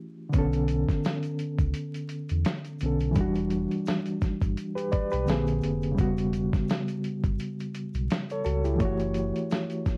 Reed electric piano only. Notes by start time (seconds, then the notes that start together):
Already playing: E3 A3 C#4 F#4
0.29 D3 B3
0.35 C#4 A4
2.81 D3 B3 C#4
2.86 A4
3.11 E3 G3
3.18 D4 F#4
4.75 G4 B4
4.92 B4 D5
5.12 G4 B4
5.26 D3 A#3 C4
5.30 G#4
5.91 C#3 G3
5.98 B3 F#4
8.32 A4 C#5
8.45 F#4 A4
8.65 E4 G4
8.76 E3 A3
8.82 F#4 C#5